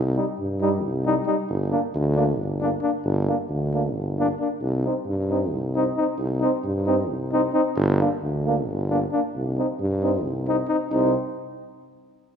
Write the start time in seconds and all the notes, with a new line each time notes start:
Already playing: C2
0.16 G3 D#4
0.39 G2
0.61 G3 D#4
0.85 C2
1.06 G3 D#4
1.26 G3 D#4
1.49 G1
1.71 A#3 D4
1.95 D2
2.15 A#3 D4
2.39 G1
2.61 A#3 D4
2.81 A#3 D4
3.04 G1
3.27 A#3 D4
3.49 D2
3.74 A#3 D4
3.95 G1
4.19 A#3 D4
4.40 A#3 D4
4.62 C2
4.85 C4 D#4
5.07 G2
5.30 C4 D#4
5.53 C2
5.76 C4 D#4
5.97 C4 D#4
6.18 C2
6.41 C4 D#4
6.64 G2
6.86 C4 D#4
7.11 C2
7.32 C4 D#4
7.53 C4 D#4
7.76 G1
8.00 A#3 D4
8.22 D2
8.46 A#3 D4
8.68 G1
8.90 A#3 D4
9.12 A#3 D4
9.35 C2
9.58 C4 D#4
9.80 G2
10.03 C4 D#4
10.25 C2
10.47 C4 D#4
10.68 C4 D#4
10.90 C2 C4 D#4